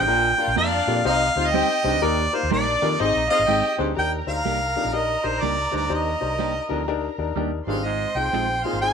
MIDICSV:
0, 0, Header, 1, 7, 480
1, 0, Start_track
1, 0, Key_signature, -3, "major"
1, 0, Tempo, 485830
1, 80, Time_signature, 4, 2, 24, 8
1, 8824, End_track
2, 0, Start_track
2, 0, Title_t, "Harmonica"
2, 0, Program_c, 0, 22
2, 0, Note_on_c, 0, 79, 112
2, 525, Note_off_c, 0, 79, 0
2, 569, Note_on_c, 0, 77, 96
2, 1011, Note_off_c, 0, 77, 0
2, 1050, Note_on_c, 0, 77, 114
2, 1446, Note_on_c, 0, 75, 98
2, 1461, Note_off_c, 0, 77, 0
2, 2003, Note_on_c, 0, 74, 96
2, 2017, Note_off_c, 0, 75, 0
2, 2314, Note_on_c, 0, 72, 85
2, 2329, Note_off_c, 0, 74, 0
2, 2486, Note_off_c, 0, 72, 0
2, 2491, Note_on_c, 0, 74, 87
2, 2972, Note_on_c, 0, 75, 92
2, 2986, Note_off_c, 0, 74, 0
2, 3253, Note_off_c, 0, 75, 0
2, 3259, Note_on_c, 0, 75, 111
2, 3707, Note_off_c, 0, 75, 0
2, 3936, Note_on_c, 0, 79, 108
2, 4068, Note_off_c, 0, 79, 0
2, 4231, Note_on_c, 0, 77, 104
2, 4884, Note_on_c, 0, 75, 89
2, 4899, Note_off_c, 0, 77, 0
2, 5190, Note_on_c, 0, 72, 78
2, 5205, Note_off_c, 0, 75, 0
2, 5354, Note_on_c, 0, 74, 85
2, 5369, Note_off_c, 0, 72, 0
2, 5661, Note_off_c, 0, 74, 0
2, 5683, Note_on_c, 0, 74, 76
2, 5839, Note_off_c, 0, 74, 0
2, 5870, Note_on_c, 0, 75, 86
2, 6777, Note_off_c, 0, 75, 0
2, 7594, Note_on_c, 0, 77, 84
2, 7760, Note_on_c, 0, 75, 91
2, 7774, Note_off_c, 0, 77, 0
2, 8067, Note_on_c, 0, 79, 104
2, 8082, Note_off_c, 0, 75, 0
2, 8530, Note_on_c, 0, 77, 92
2, 8545, Note_off_c, 0, 79, 0
2, 8701, Note_off_c, 0, 77, 0
2, 8707, Note_on_c, 0, 80, 109
2, 8824, Note_off_c, 0, 80, 0
2, 8824, End_track
3, 0, Start_track
3, 0, Title_t, "Violin section"
3, 0, Program_c, 1, 48
3, 388, Note_on_c, 1, 77, 83
3, 390, Note_on_c, 1, 65, 76
3, 528, Note_off_c, 1, 77, 0
3, 529, Note_off_c, 1, 65, 0
3, 554, Note_on_c, 1, 74, 119
3, 556, Note_on_c, 1, 62, 116
3, 1008, Note_off_c, 1, 74, 0
3, 1009, Note_off_c, 1, 62, 0
3, 1054, Note_on_c, 1, 63, 98
3, 1057, Note_on_c, 1, 75, 105
3, 1290, Note_off_c, 1, 63, 0
3, 1292, Note_off_c, 1, 75, 0
3, 1353, Note_on_c, 1, 77, 113
3, 1354, Note_on_c, 1, 65, 106
3, 1491, Note_off_c, 1, 65, 0
3, 1491, Note_off_c, 1, 77, 0
3, 1513, Note_on_c, 1, 67, 111
3, 1514, Note_on_c, 1, 79, 123
3, 1884, Note_off_c, 1, 67, 0
3, 1884, Note_off_c, 1, 79, 0
3, 2300, Note_on_c, 1, 77, 82
3, 2303, Note_on_c, 1, 65, 74
3, 2443, Note_off_c, 1, 77, 0
3, 2444, Note_off_c, 1, 65, 0
3, 2463, Note_on_c, 1, 62, 100
3, 2469, Note_on_c, 1, 74, 116
3, 2922, Note_off_c, 1, 62, 0
3, 2925, Note_off_c, 1, 74, 0
3, 2948, Note_on_c, 1, 63, 97
3, 2949, Note_on_c, 1, 75, 105
3, 3194, Note_off_c, 1, 63, 0
3, 3195, Note_off_c, 1, 75, 0
3, 3252, Note_on_c, 1, 65, 98
3, 3254, Note_on_c, 1, 77, 117
3, 3398, Note_off_c, 1, 65, 0
3, 3399, Note_off_c, 1, 77, 0
3, 3430, Note_on_c, 1, 67, 104
3, 3433, Note_on_c, 1, 79, 110
3, 3802, Note_off_c, 1, 67, 0
3, 3804, Note_off_c, 1, 79, 0
3, 3909, Note_on_c, 1, 70, 89
3, 3911, Note_on_c, 1, 82, 96
3, 7238, Note_off_c, 1, 70, 0
3, 7239, Note_off_c, 1, 82, 0
3, 7576, Note_on_c, 1, 72, 85
3, 7578, Note_on_c, 1, 84, 98
3, 8824, Note_off_c, 1, 72, 0
3, 8824, Note_off_c, 1, 84, 0
3, 8824, End_track
4, 0, Start_track
4, 0, Title_t, "Upright piano"
4, 0, Program_c, 2, 0
4, 74, Note_on_c, 2, 62, 85
4, 75, Note_on_c, 2, 65, 86
4, 76, Note_on_c, 2, 70, 108
4, 77, Note_on_c, 2, 58, 90
4, 269, Note_off_c, 2, 62, 0
4, 269, Note_off_c, 2, 65, 0
4, 269, Note_off_c, 2, 70, 0
4, 270, Note_off_c, 2, 58, 0
4, 376, Note_on_c, 2, 62, 71
4, 377, Note_on_c, 2, 58, 72
4, 377, Note_on_c, 2, 65, 69
4, 377, Note_on_c, 2, 70, 80
4, 492, Note_off_c, 2, 58, 0
4, 492, Note_off_c, 2, 62, 0
4, 492, Note_off_c, 2, 65, 0
4, 492, Note_off_c, 2, 70, 0
4, 560, Note_on_c, 2, 62, 66
4, 561, Note_on_c, 2, 58, 69
4, 561, Note_on_c, 2, 70, 84
4, 563, Note_on_c, 2, 65, 71
4, 751, Note_off_c, 2, 62, 0
4, 752, Note_off_c, 2, 58, 0
4, 752, Note_off_c, 2, 70, 0
4, 753, Note_off_c, 2, 65, 0
4, 864, Note_on_c, 2, 58, 83
4, 867, Note_on_c, 2, 65, 72
4, 868, Note_on_c, 2, 62, 73
4, 868, Note_on_c, 2, 67, 88
4, 975, Note_off_c, 2, 58, 0
4, 977, Note_off_c, 2, 62, 0
4, 977, Note_off_c, 2, 65, 0
4, 977, Note_off_c, 2, 67, 0
4, 1035, Note_on_c, 2, 67, 88
4, 1038, Note_on_c, 2, 63, 92
4, 1040, Note_on_c, 2, 60, 99
4, 1041, Note_on_c, 2, 72, 109
4, 1229, Note_off_c, 2, 67, 0
4, 1230, Note_off_c, 2, 63, 0
4, 1231, Note_off_c, 2, 60, 0
4, 1232, Note_off_c, 2, 72, 0
4, 1349, Note_on_c, 2, 63, 69
4, 1351, Note_on_c, 2, 60, 71
4, 1352, Note_on_c, 2, 67, 66
4, 1352, Note_on_c, 2, 72, 82
4, 1458, Note_off_c, 2, 63, 0
4, 1459, Note_off_c, 2, 60, 0
4, 1459, Note_off_c, 2, 67, 0
4, 1459, Note_off_c, 2, 72, 0
4, 1521, Note_on_c, 2, 60, 71
4, 1524, Note_on_c, 2, 67, 67
4, 1525, Note_on_c, 2, 63, 68
4, 1526, Note_on_c, 2, 72, 85
4, 1712, Note_off_c, 2, 60, 0
4, 1713, Note_off_c, 2, 67, 0
4, 1714, Note_off_c, 2, 63, 0
4, 1714, Note_off_c, 2, 72, 0
4, 1818, Note_on_c, 2, 72, 78
4, 1820, Note_on_c, 2, 60, 77
4, 1820, Note_on_c, 2, 63, 70
4, 1820, Note_on_c, 2, 67, 72
4, 1932, Note_off_c, 2, 72, 0
4, 1933, Note_off_c, 2, 60, 0
4, 1933, Note_off_c, 2, 63, 0
4, 1933, Note_off_c, 2, 67, 0
4, 1990, Note_on_c, 2, 58, 93
4, 1993, Note_on_c, 2, 63, 84
4, 1994, Note_on_c, 2, 67, 83
4, 1995, Note_on_c, 2, 70, 113
4, 2186, Note_off_c, 2, 58, 0
4, 2187, Note_off_c, 2, 63, 0
4, 2188, Note_off_c, 2, 67, 0
4, 2189, Note_off_c, 2, 70, 0
4, 2302, Note_on_c, 2, 58, 80
4, 2302, Note_on_c, 2, 67, 65
4, 2305, Note_on_c, 2, 63, 65
4, 2305, Note_on_c, 2, 70, 81
4, 2414, Note_off_c, 2, 58, 0
4, 2414, Note_off_c, 2, 67, 0
4, 2415, Note_off_c, 2, 70, 0
4, 2416, Note_off_c, 2, 63, 0
4, 2481, Note_on_c, 2, 58, 73
4, 2482, Note_on_c, 2, 70, 78
4, 2483, Note_on_c, 2, 63, 67
4, 2484, Note_on_c, 2, 67, 66
4, 2671, Note_off_c, 2, 58, 0
4, 2672, Note_off_c, 2, 70, 0
4, 2673, Note_off_c, 2, 63, 0
4, 2673, Note_off_c, 2, 67, 0
4, 2787, Note_on_c, 2, 58, 85
4, 2787, Note_on_c, 2, 63, 70
4, 2788, Note_on_c, 2, 70, 89
4, 2789, Note_on_c, 2, 67, 72
4, 2897, Note_off_c, 2, 58, 0
4, 2897, Note_off_c, 2, 63, 0
4, 2897, Note_off_c, 2, 70, 0
4, 2898, Note_off_c, 2, 67, 0
4, 2961, Note_on_c, 2, 72, 98
4, 2965, Note_on_c, 2, 60, 101
4, 2965, Note_on_c, 2, 63, 87
4, 2967, Note_on_c, 2, 68, 83
4, 3152, Note_off_c, 2, 72, 0
4, 3153, Note_off_c, 2, 60, 0
4, 3154, Note_off_c, 2, 63, 0
4, 3155, Note_off_c, 2, 68, 0
4, 3265, Note_on_c, 2, 63, 60
4, 3267, Note_on_c, 2, 60, 73
4, 3268, Note_on_c, 2, 68, 64
4, 3268, Note_on_c, 2, 72, 80
4, 3376, Note_off_c, 2, 63, 0
4, 3377, Note_off_c, 2, 60, 0
4, 3377, Note_off_c, 2, 68, 0
4, 3377, Note_off_c, 2, 72, 0
4, 3437, Note_on_c, 2, 63, 64
4, 3439, Note_on_c, 2, 68, 64
4, 3440, Note_on_c, 2, 60, 75
4, 3442, Note_on_c, 2, 75, 82
4, 3630, Note_off_c, 2, 63, 0
4, 3631, Note_off_c, 2, 60, 0
4, 3631, Note_off_c, 2, 68, 0
4, 3632, Note_off_c, 2, 75, 0
4, 3738, Note_on_c, 2, 60, 88
4, 3738, Note_on_c, 2, 63, 80
4, 3739, Note_on_c, 2, 68, 76
4, 3741, Note_on_c, 2, 72, 96
4, 3852, Note_off_c, 2, 60, 0
4, 3852, Note_off_c, 2, 63, 0
4, 3853, Note_off_c, 2, 68, 0
4, 3854, Note_off_c, 2, 72, 0
4, 3915, Note_on_c, 2, 70, 88
4, 3916, Note_on_c, 2, 67, 77
4, 3917, Note_on_c, 2, 63, 75
4, 3918, Note_on_c, 2, 62, 83
4, 4109, Note_off_c, 2, 67, 0
4, 4109, Note_off_c, 2, 70, 0
4, 4110, Note_off_c, 2, 62, 0
4, 4110, Note_off_c, 2, 63, 0
4, 4218, Note_on_c, 2, 72, 73
4, 4219, Note_on_c, 2, 62, 64
4, 4219, Note_on_c, 2, 63, 62
4, 4221, Note_on_c, 2, 67, 57
4, 4333, Note_off_c, 2, 62, 0
4, 4333, Note_off_c, 2, 63, 0
4, 4333, Note_off_c, 2, 72, 0
4, 4334, Note_off_c, 2, 67, 0
4, 4397, Note_on_c, 2, 67, 57
4, 4398, Note_on_c, 2, 70, 70
4, 4399, Note_on_c, 2, 63, 59
4, 4402, Note_on_c, 2, 62, 65
4, 4590, Note_off_c, 2, 67, 0
4, 4591, Note_off_c, 2, 63, 0
4, 4591, Note_off_c, 2, 70, 0
4, 4592, Note_off_c, 2, 62, 0
4, 4705, Note_on_c, 2, 62, 70
4, 4708, Note_on_c, 2, 67, 66
4, 4709, Note_on_c, 2, 63, 69
4, 4709, Note_on_c, 2, 70, 74
4, 4816, Note_off_c, 2, 62, 0
4, 4818, Note_off_c, 2, 63, 0
4, 4818, Note_off_c, 2, 67, 0
4, 4818, Note_off_c, 2, 70, 0
4, 4872, Note_on_c, 2, 62, 82
4, 4872, Note_on_c, 2, 63, 81
4, 4874, Note_on_c, 2, 70, 91
4, 4878, Note_on_c, 2, 67, 78
4, 5068, Note_off_c, 2, 62, 0
4, 5068, Note_off_c, 2, 63, 0
4, 5069, Note_off_c, 2, 70, 0
4, 5071, Note_off_c, 2, 67, 0
4, 5173, Note_on_c, 2, 62, 67
4, 5174, Note_on_c, 2, 67, 59
4, 5174, Note_on_c, 2, 72, 69
4, 5175, Note_on_c, 2, 63, 61
4, 5291, Note_off_c, 2, 62, 0
4, 5291, Note_off_c, 2, 67, 0
4, 5291, Note_off_c, 2, 72, 0
4, 5292, Note_off_c, 2, 63, 0
4, 5351, Note_on_c, 2, 63, 65
4, 5352, Note_on_c, 2, 67, 63
4, 5352, Note_on_c, 2, 70, 74
4, 5353, Note_on_c, 2, 62, 65
4, 5547, Note_off_c, 2, 63, 0
4, 5548, Note_off_c, 2, 67, 0
4, 5548, Note_off_c, 2, 70, 0
4, 5549, Note_off_c, 2, 62, 0
4, 5644, Note_on_c, 2, 63, 64
4, 5650, Note_on_c, 2, 67, 65
4, 5651, Note_on_c, 2, 62, 65
4, 5653, Note_on_c, 2, 72, 72
4, 5766, Note_off_c, 2, 63, 0
4, 5769, Note_off_c, 2, 67, 0
4, 5770, Note_off_c, 2, 62, 0
4, 5771, Note_off_c, 2, 72, 0
4, 5823, Note_on_c, 2, 67, 77
4, 5824, Note_on_c, 2, 72, 93
4, 5827, Note_on_c, 2, 63, 86
4, 5828, Note_on_c, 2, 62, 91
4, 6024, Note_off_c, 2, 67, 0
4, 6025, Note_off_c, 2, 72, 0
4, 6026, Note_off_c, 2, 62, 0
4, 6026, Note_off_c, 2, 63, 0
4, 6130, Note_on_c, 2, 63, 59
4, 6133, Note_on_c, 2, 62, 70
4, 6134, Note_on_c, 2, 72, 75
4, 6137, Note_on_c, 2, 67, 61
4, 6249, Note_off_c, 2, 63, 0
4, 6251, Note_off_c, 2, 62, 0
4, 6251, Note_off_c, 2, 72, 0
4, 6253, Note_off_c, 2, 67, 0
4, 6307, Note_on_c, 2, 67, 60
4, 6310, Note_on_c, 2, 62, 63
4, 6310, Note_on_c, 2, 63, 63
4, 6312, Note_on_c, 2, 72, 74
4, 6506, Note_off_c, 2, 67, 0
4, 6507, Note_off_c, 2, 62, 0
4, 6507, Note_off_c, 2, 63, 0
4, 6509, Note_off_c, 2, 72, 0
4, 6610, Note_on_c, 2, 62, 85
4, 6611, Note_on_c, 2, 63, 78
4, 6612, Note_on_c, 2, 67, 78
4, 6614, Note_on_c, 2, 70, 99
4, 6730, Note_off_c, 2, 62, 0
4, 6730, Note_off_c, 2, 63, 0
4, 6731, Note_off_c, 2, 67, 0
4, 6732, Note_off_c, 2, 70, 0
4, 6797, Note_on_c, 2, 62, 108
4, 6797, Note_on_c, 2, 67, 99
4, 6799, Note_on_c, 2, 63, 93
4, 6803, Note_on_c, 2, 70, 109
4, 6991, Note_off_c, 2, 62, 0
4, 6991, Note_off_c, 2, 67, 0
4, 6992, Note_off_c, 2, 63, 0
4, 6994, Note_off_c, 2, 70, 0
4, 7100, Note_on_c, 2, 70, 85
4, 7101, Note_on_c, 2, 67, 70
4, 7103, Note_on_c, 2, 62, 82
4, 7103, Note_on_c, 2, 63, 69
4, 7215, Note_off_c, 2, 67, 0
4, 7215, Note_off_c, 2, 70, 0
4, 7216, Note_off_c, 2, 62, 0
4, 7216, Note_off_c, 2, 63, 0
4, 7282, Note_on_c, 2, 67, 72
4, 7283, Note_on_c, 2, 62, 80
4, 7283, Note_on_c, 2, 63, 76
4, 7286, Note_on_c, 2, 70, 93
4, 7474, Note_off_c, 2, 62, 0
4, 7474, Note_off_c, 2, 63, 0
4, 7474, Note_off_c, 2, 67, 0
4, 7476, Note_off_c, 2, 70, 0
4, 7586, Note_on_c, 2, 63, 68
4, 7586, Note_on_c, 2, 65, 67
4, 7587, Note_on_c, 2, 68, 87
4, 7590, Note_on_c, 2, 58, 54
4, 7630, Note_off_c, 2, 58, 0
4, 7645, Note_on_c, 2, 60, 77
4, 7945, Note_off_c, 2, 63, 0
4, 7945, Note_off_c, 2, 65, 0
4, 7945, Note_off_c, 2, 68, 0
4, 7974, Note_off_c, 2, 60, 0
4, 8062, Note_on_c, 2, 60, 70
4, 8063, Note_on_c, 2, 65, 59
4, 8064, Note_on_c, 2, 63, 64
4, 8066, Note_on_c, 2, 68, 69
4, 8176, Note_off_c, 2, 60, 0
4, 8176, Note_off_c, 2, 65, 0
4, 8177, Note_off_c, 2, 63, 0
4, 8178, Note_off_c, 2, 68, 0
4, 8239, Note_on_c, 2, 63, 60
4, 8239, Note_on_c, 2, 65, 61
4, 8241, Note_on_c, 2, 68, 69
4, 8244, Note_on_c, 2, 60, 65
4, 8432, Note_off_c, 2, 65, 0
4, 8433, Note_off_c, 2, 63, 0
4, 8433, Note_off_c, 2, 68, 0
4, 8435, Note_off_c, 2, 60, 0
4, 8546, Note_on_c, 2, 60, 67
4, 8546, Note_on_c, 2, 65, 67
4, 8548, Note_on_c, 2, 68, 87
4, 8549, Note_on_c, 2, 63, 66
4, 8658, Note_off_c, 2, 60, 0
4, 8658, Note_off_c, 2, 65, 0
4, 8659, Note_off_c, 2, 63, 0
4, 8659, Note_off_c, 2, 68, 0
4, 8720, Note_on_c, 2, 65, 84
4, 8721, Note_on_c, 2, 60, 83
4, 8721, Note_on_c, 2, 68, 93
4, 8722, Note_on_c, 2, 63, 79
4, 8824, Note_off_c, 2, 60, 0
4, 8824, Note_off_c, 2, 63, 0
4, 8824, Note_off_c, 2, 65, 0
4, 8824, Note_off_c, 2, 68, 0
4, 8824, End_track
5, 0, Start_track
5, 0, Title_t, "Clean electric guitar"
5, 0, Program_c, 3, 27
5, 552, Note_on_c, 3, 58, 86
5, 560, Note_on_c, 3, 62, 89
5, 565, Note_on_c, 3, 65, 89
5, 567, Note_on_c, 3, 70, 102
5, 688, Note_off_c, 3, 58, 0
5, 692, Note_off_c, 3, 62, 0
5, 694, Note_off_c, 3, 65, 0
5, 695, Note_off_c, 3, 70, 0
5, 1519, Note_on_c, 3, 55, 89
5, 1523, Note_on_c, 3, 63, 96
5, 1524, Note_on_c, 3, 60, 90
5, 1529, Note_on_c, 3, 67, 96
5, 1651, Note_off_c, 3, 55, 0
5, 1653, Note_off_c, 3, 63, 0
5, 1654, Note_off_c, 3, 60, 0
5, 1656, Note_off_c, 3, 67, 0
5, 2476, Note_on_c, 3, 55, 83
5, 2483, Note_on_c, 3, 58, 70
5, 2488, Note_on_c, 3, 63, 78
5, 2494, Note_on_c, 3, 67, 81
5, 2610, Note_off_c, 3, 55, 0
5, 2613, Note_off_c, 3, 58, 0
5, 2616, Note_off_c, 3, 63, 0
5, 2619, Note_off_c, 3, 67, 0
5, 3437, Note_on_c, 3, 56, 87
5, 3445, Note_on_c, 3, 60, 78
5, 3451, Note_on_c, 3, 63, 98
5, 3452, Note_on_c, 3, 68, 92
5, 3570, Note_off_c, 3, 56, 0
5, 3574, Note_off_c, 3, 60, 0
5, 3577, Note_off_c, 3, 63, 0
5, 3578, Note_off_c, 3, 68, 0
5, 4398, Note_on_c, 3, 55, 69
5, 4400, Note_on_c, 3, 58, 68
5, 4405, Note_on_c, 3, 62, 69
5, 4409, Note_on_c, 3, 67, 68
5, 4531, Note_off_c, 3, 55, 0
5, 4532, Note_off_c, 3, 58, 0
5, 4534, Note_off_c, 3, 62, 0
5, 4537, Note_off_c, 3, 67, 0
5, 5357, Note_on_c, 3, 55, 76
5, 5365, Note_on_c, 3, 58, 82
5, 5366, Note_on_c, 3, 62, 82
5, 5373, Note_on_c, 3, 67, 89
5, 5491, Note_off_c, 3, 55, 0
5, 5495, Note_off_c, 3, 58, 0
5, 5496, Note_off_c, 3, 62, 0
5, 5499, Note_off_c, 3, 67, 0
5, 6311, Note_on_c, 3, 55, 72
5, 6317, Note_on_c, 3, 58, 74
5, 6321, Note_on_c, 3, 62, 77
5, 6325, Note_on_c, 3, 67, 80
5, 6448, Note_off_c, 3, 55, 0
5, 6452, Note_off_c, 3, 58, 0
5, 6453, Note_off_c, 3, 62, 0
5, 6455, Note_off_c, 3, 67, 0
5, 7269, Note_on_c, 3, 55, 75
5, 7277, Note_on_c, 3, 58, 78
5, 7283, Note_on_c, 3, 62, 82
5, 7284, Note_on_c, 3, 67, 79
5, 7408, Note_off_c, 3, 55, 0
5, 7412, Note_off_c, 3, 58, 0
5, 7415, Note_off_c, 3, 62, 0
5, 7416, Note_off_c, 3, 67, 0
5, 8231, Note_on_c, 3, 56, 68
5, 8239, Note_on_c, 3, 60, 71
5, 8240, Note_on_c, 3, 65, 76
5, 8245, Note_on_c, 3, 68, 87
5, 8369, Note_off_c, 3, 56, 0
5, 8373, Note_off_c, 3, 60, 0
5, 8373, Note_off_c, 3, 65, 0
5, 8376, Note_off_c, 3, 68, 0
5, 8824, End_track
6, 0, Start_track
6, 0, Title_t, "Baritone saxophone"
6, 0, Program_c, 4, 67
6, 88, Note_on_c, 4, 46, 81
6, 327, Note_off_c, 4, 46, 0
6, 857, Note_on_c, 4, 41, 75
6, 1001, Note_off_c, 4, 41, 0
6, 1823, Note_on_c, 4, 43, 87
6, 1964, Note_off_c, 4, 43, 0
6, 1990, Note_on_c, 4, 39, 81
6, 2236, Note_off_c, 4, 39, 0
6, 2783, Note_on_c, 4, 41, 72
6, 2925, Note_off_c, 4, 41, 0
6, 3744, Note_on_c, 4, 43, 83
6, 3885, Note_off_c, 4, 43, 0
6, 3914, Note_on_c, 4, 39, 70
6, 4159, Note_off_c, 4, 39, 0
6, 4699, Note_on_c, 4, 41, 70
6, 4843, Note_off_c, 4, 41, 0
6, 5651, Note_on_c, 4, 43, 76
6, 5798, Note_off_c, 4, 43, 0
6, 5836, Note_on_c, 4, 39, 70
6, 6080, Note_off_c, 4, 39, 0
6, 6616, Note_on_c, 4, 41, 69
6, 6761, Note_off_c, 4, 41, 0
6, 7576, Note_on_c, 4, 43, 82
6, 7722, Note_off_c, 4, 43, 0
6, 7751, Note_on_c, 4, 44, 73
6, 7998, Note_off_c, 4, 44, 0
6, 8540, Note_on_c, 4, 46, 71
6, 8684, Note_off_c, 4, 46, 0
6, 8824, End_track
7, 0, Start_track
7, 0, Title_t, "Fingered electric bass"
7, 0, Program_c, 5, 33
7, 81, Note_on_c, 5, 34, 110
7, 311, Note_off_c, 5, 34, 0
7, 468, Note_on_c, 5, 34, 92
7, 537, Note_off_c, 5, 34, 0
7, 557, Note_on_c, 5, 41, 97
7, 788, Note_off_c, 5, 41, 0
7, 862, Note_on_c, 5, 46, 98
7, 997, Note_off_c, 5, 46, 0
7, 1035, Note_on_c, 5, 36, 116
7, 1267, Note_off_c, 5, 36, 0
7, 1342, Note_on_c, 5, 38, 104
7, 1592, Note_off_c, 5, 38, 0
7, 1821, Note_on_c, 5, 36, 108
7, 1889, Note_off_c, 5, 36, 0
7, 1912, Note_on_c, 5, 38, 76
7, 1979, Note_off_c, 5, 38, 0
7, 2006, Note_on_c, 5, 39, 98
7, 2233, Note_off_c, 5, 39, 0
7, 2402, Note_on_c, 5, 39, 87
7, 2465, Note_off_c, 5, 39, 0
7, 2485, Note_on_c, 5, 34, 88
7, 2713, Note_off_c, 5, 34, 0
7, 2790, Note_on_c, 5, 51, 100
7, 2922, Note_off_c, 5, 51, 0
7, 2966, Note_on_c, 5, 32, 118
7, 3078, Note_off_c, 5, 32, 0
7, 3115, Note_on_c, 5, 34, 84
7, 3228, Note_off_c, 5, 34, 0
7, 3350, Note_on_c, 5, 32, 81
7, 3418, Note_off_c, 5, 32, 0
7, 3442, Note_on_c, 5, 32, 97
7, 3556, Note_off_c, 5, 32, 0
7, 3743, Note_on_c, 5, 38, 99
7, 3877, Note_off_c, 5, 38, 0
7, 3924, Note_on_c, 5, 39, 85
7, 4152, Note_off_c, 5, 39, 0
7, 4217, Note_on_c, 5, 38, 77
7, 4354, Note_off_c, 5, 38, 0
7, 4396, Note_on_c, 5, 36, 84
7, 4696, Note_off_c, 5, 36, 0
7, 4787, Note_on_c, 5, 34, 79
7, 5087, Note_off_c, 5, 34, 0
7, 5178, Note_on_c, 5, 34, 74
7, 5315, Note_off_c, 5, 34, 0
7, 5353, Note_on_c, 5, 37, 100
7, 5587, Note_off_c, 5, 37, 0
7, 5659, Note_on_c, 5, 38, 90
7, 5796, Note_off_c, 5, 38, 0
7, 5828, Note_on_c, 5, 39, 89
7, 6064, Note_off_c, 5, 39, 0
7, 6141, Note_on_c, 5, 36, 79
7, 6508, Note_off_c, 5, 36, 0
7, 6621, Note_on_c, 5, 38, 84
7, 6988, Note_off_c, 5, 38, 0
7, 7097, Note_on_c, 5, 39, 85
7, 7235, Note_off_c, 5, 39, 0
7, 7268, Note_on_c, 5, 39, 94
7, 7504, Note_off_c, 5, 39, 0
7, 7576, Note_on_c, 5, 32, 96
7, 7945, Note_off_c, 5, 32, 0
7, 8052, Note_on_c, 5, 36, 78
7, 8192, Note_off_c, 5, 36, 0
7, 8230, Note_on_c, 5, 34, 89
7, 8532, Note_off_c, 5, 34, 0
7, 8625, Note_on_c, 5, 32, 83
7, 8824, Note_off_c, 5, 32, 0
7, 8824, End_track
0, 0, End_of_file